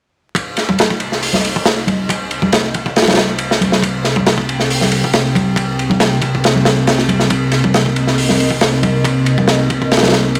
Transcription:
0.35 10.40 C3 medium
0.35 10.40 C4 medium
0.35 10.40 A#4 medium
0.35 3.82 D#5 medium
0.35 kick loud
0.35 ride medium
0.57 snare soft
0.57 ride medium
0.69 kick medium
0.69 high conga medium
0.79 snare loud
0.79 ride medium
0.90 kick medium
1.00 ride medium
1.12 snare soft
1.22 open hi-hat medium
1.33 snare soft
1.33 high conga medium
1.45 ride medium
1.56 kick medium
1.65 snare loud
1.65 ride medium
1.87 kick medium
1.87 ride medium
1.87 high conga medium
2.09 kick loud
2.09 ride medium
2.31 ride medium
2.42 kick medium
2.42 high conga medium
2.52 snare loud
2.52 ride medium
2.74 kick medium
2.74 ride medium
2.86 kick medium
2.96 snare medium
2.96 ride medium
3.02 snare medium
3.02 ride medium
3.07 snare medium
3.07 ride medium
3.07 high conga medium
3.12 snare medium
3.12 ride medium
3.17 snare loud
3.17 ride medium
3.38 ride medium
3.51 snare medium
3.61 ride medium
3.61 high conga medium
3.72 snare medium
3.83 7.29 G5 medium
3.83 kick medium
3.83 ride medium
4.05 snare soft
4.05 ride medium
4.16 kick medium
4.16 high conga medium
4.26 snare loud
4.26 ride medium
4.38 kick loud
4.49 ride medium
4.60 snare soft
4.70 open hi-hat medium
4.81 snare soft
4.81 high conga medium
4.92 ride medium
5.04 kick medium
5.13 snare loud
5.13 ride medium
5.35 kick medium
5.35 ride medium
5.35 high conga medium
5.56 kick loud
5.56 ride medium
5.79 ride medium
5.90 kick medium
5.90 high conga medium
6.00 snare loud
6.00 ride medium
6.22 kick medium
6.22 ride medium
6.35 kick medium
6.44 snare loud
6.44 ride medium
6.55 high conga medium
6.65 snare loud
6.65 ride medium
6.87 snare loud
6.87 ride medium
6.98 snare soft
7.08 ride medium
7.08 high conga medium
7.20 snare soft
7.30 10.40 D#5 medium
7.30 kick loud
7.30 ride medium
7.52 snare soft
7.52 ride medium
7.64 kick medium
7.64 high conga medium
7.74 snare loud
7.74 ride medium
7.86 kick medium
7.96 ride medium
8.07 snare soft
8.18 open hi-hat medium
8.29 snare soft
8.29 high conga medium
8.40 ride medium
8.50 kick medium
8.61 snare loud
8.61 ride medium
8.83 kick medium
8.83 ride medium
8.83 high conga medium
9.05 kick loud
9.05 ride medium
9.26 ride medium
9.38 kick medium
9.38 high conga medium
9.48 snare loud
9.48 ride medium
9.70 kick medium
9.70 ride medium
9.82 kick medium
9.92 snare medium
9.92 ride medium
9.97 snare medium
9.97 ride medium
10.03 snare medium
10.03 ride medium
10.03 high conga medium
10.07 snare medium
10.07 ride medium
10.12 snare loud
10.12 ride medium
10.35 ride medium

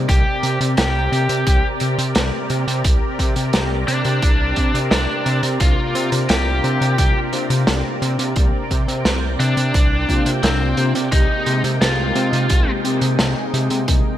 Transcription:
0.00 5.57 C3 medium
0.00 11.08 D5 medium
0.09 0.24 C2 loud
0.09 11.08 C4 medium
0.09 0.58 G4 medium
0.09 5.57 G4 medium
0.09 11.08 A#4 medium
0.09 kick loud
0.09 closed hi-hat medium
0.43 0.59 C3 loud
0.43 closed hi-hat medium
0.61 0.76 C3 medium
0.61 closed hi-hat medium
0.77 1.09 C2 medium
0.77 1.67 G4 medium
0.77 snare loud
0.77 closed hi-hat loud
1.12 1.28 C3 loud
1.12 closed hi-hat medium
1.29 1.45 C3 medium
1.29 closed hi-hat medium
1.47 1.62 C2 loud
1.47 kick loud
1.47 closed hi-hat loud
1.80 1.97 C3 medium
1.80 closed hi-hat medium
1.98 2.14 C3 medium
1.98 closed hi-hat medium
2.15 2.31 C2 medium
2.15 snare loud
2.15 closed hi-hat loud
2.50 2.66 C3 loud
2.50 closed hi-hat medium
2.67 2.83 C3 medium
2.67 closed hi-hat medium
2.84 3.00 C2 medium
2.84 kick loud
2.84 closed hi-hat loud
3.19 3.35 C3 loud
3.19 kick medium
3.19 closed hi-hat medium
3.36 3.52 C3 medium
3.36 closed hi-hat medium
3.53 3.85 C2 medium
3.53 snare loud
3.53 closed hi-hat medium
3.88 4.04 C3 loud
3.88 4.78 D4 medium
3.88 closed hi-hat medium
4.05 4.21 C3 medium
4.05 closed hi-hat medium
4.22 4.54 C2 loud
4.22 kick loud
4.22 closed hi-hat medium
4.56 4.73 C3 medium
4.56 kick medium
4.56 closed hi-hat medium
4.74 4.90 C3 medium
4.74 closed hi-hat medium
4.91 5.07 C2 loud
4.91 5.40 D4 medium
4.91 snare loud
4.91 closed hi-hat medium
5.26 5.42 C3 medium
5.26 closed hi-hat medium
5.43 5.59 C3 medium
5.43 closed hi-hat medium
5.60 5.76 C2 loud
5.60 7.29 C3 medium
5.60 14.18 C3 medium
5.60 7.29 A#3 medium
5.60 7.29 D4 medium
5.60 6.09 F4 medium
5.60 7.29 F4 medium
5.60 8.34 F4 medium
5.60 kick loud
5.60 closed hi-hat medium
5.95 6.11 C3 loud
5.95 closed hi-hat medium
6.12 6.28 C3 medium
6.12 closed hi-hat medium
6.29 6.61 C2 medium
6.29 7.19 G4 medium
6.29 snare loud
6.29 closed hi-hat medium
6.64 6.79 C3 loud
6.64 closed hi-hat medium
6.81 6.97 C3 medium
6.81 closed hi-hat medium
6.98 7.14 C2 loud
6.98 kick loud
6.98 closed hi-hat loud
7.33 7.48 C3 medium
7.33 7.63 C3 loud
7.33 7.63 A#3 medium
7.33 7.63 D4 medium
7.33 7.63 F4 loud
7.33 closed hi-hat medium
7.50 7.66 C3 medium
7.50 closed hi-hat medium
7.67 7.83 C2 medium
7.67 8.32 C3 medium
7.67 8.32 A#3 medium
7.67 8.32 D4 medium
7.67 8.32 G4 medium
7.67 snare loud
7.67 closed hi-hat loud
8.02 8.17 C3 loud
8.02 closed hi-hat medium
8.19 8.35 C3 medium
8.19 closed hi-hat medium
8.36 8.52 C2 medium
8.36 8.64 C3 medium
8.36 8.64 A#3 medium
8.36 8.64 D4 medium
8.36 8.64 G4 medium
8.36 14.18 G5 medium
8.36 kick loud
8.36 closed hi-hat medium
8.71 8.86 C3 loud
8.71 kick medium
8.71 closed hi-hat medium
8.88 9.04 C3 medium
8.88 closed hi-hat medium
9.05 9.36 C2 medium
9.05 snare loud
9.05 closed hi-hat medium
9.40 9.55 C3 loud
9.40 10.29 D4 medium
9.40 closed hi-hat medium
9.57 9.73 C3 medium
9.57 closed hi-hat medium
9.74 10.05 C2 loud
9.74 kick loud
9.74 closed hi-hat medium
10.09 10.24 C3 medium
10.09 11.08 C3 medium
10.09 11.08 A#3 medium
10.09 11.08 D4 medium
10.09 11.08 F4 loud
10.09 kick medium
10.09 closed hi-hat medium
10.26 10.42 C3 loud
10.26 closed hi-hat medium
10.43 10.74 C2 medium
10.43 10.92 C4 medium
10.43 snare loud
10.43 closed hi-hat medium
10.77 10.93 C3 medium
10.77 closed hi-hat medium
10.95 11.11 C3 medium
10.95 closed hi-hat medium
11.12 11.28 C2 medium
11.12 12.81 C3 medium
11.12 14.18 G#3 medium
11.12 12.81 G#3 medium
11.12 14.18 A#3 medium
11.12 12.81 C4 medium
11.12 11.61 D#4 loud
11.12 14.18 D#4 medium
11.12 12.81 G4 medium
11.12 kick loud
11.12 closed hi-hat loud
11.46 11.62 C3 loud
11.46 closed hi-hat medium
11.64 11.79 C3 medium
11.64 closed hi-hat medium
11.81 12.12 C2 medium
11.81 12.71 F4 medium
11.81 snare loud
11.81 closed hi-hat medium
12.16 12.31 C3 loud
12.16 closed hi-hat medium
12.33 12.48 C3 medium
12.33 closed hi-hat medium
12.50 12.66 C2 loud
12.50 kick loud
12.50 closed hi-hat medium
12.84 13.00 C3 medium
12.84 13.15 C3 loud
12.84 13.15 G#3 medium
12.84 13.15 C4 medium
12.84 13.15 G4 loud
12.84 closed hi-hat medium
13.01 13.17 C3 loud
13.01 closed hi-hat medium
13.19 13.35 C2 medium
13.19 13.84 C3 medium
13.19 13.84 G#3 medium
13.19 13.84 C4 medium
13.19 13.84 G#4 medium
13.19 snare loud
13.19 closed hi-hat medium
13.54 13.69 C3 loud
13.54 closed hi-hat medium
13.70 13.86 C3 medium
13.70 closed hi-hat medium
13.88 14.04 C2 loud
13.88 14.15 C3 medium
13.88 14.15 G#3 medium
13.88 14.15 C4 medium
13.88 14.15 G#4 medium
13.88 kick loud
13.88 closed hi-hat loud

